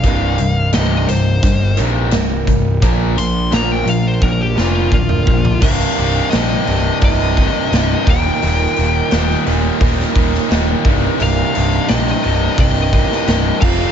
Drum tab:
CC |----------------|----------------|x---------------|----------------|
HH |x-x-x-x-x-x-x-x-|x-x-x-x---------|--o-o-o-o-o-o-o-|o-o-o-o-o-o-o-o-|
SD |----o-o-----o---|----o-----o-----|----o-------o---|----oo---o-oo---|
T2 |----------------|-------------o--|----------------|----------------|
FT |----------------|---------------o|----------------|----------------|
BD |o-------o-----o-|o-------o---o-o-|o-------o-o---o-|--------o-o---o-|

CC |--------------x-|
HH |o-o-o-o-o-o-o---|
SD |----oo-----oo---|
T2 |----------------|
FT |----------------|
BD |--------o-o---o-|